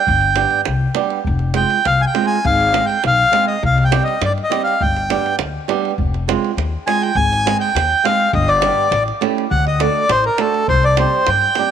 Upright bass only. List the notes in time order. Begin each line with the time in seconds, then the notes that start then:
0.08 G1
0.67 C2
1.27 F1
1.86 C2
2.45 G#1
3.05 B1
3.63 C2
4.21 G2
4.80 G1
5.39 D2
5.98 F1
6.57 D#2
7.15 G#1
7.75 D#2
8.33 G1
8.91 A1
9.51 D2
10.09 A1
10.69 C2
11.27 G2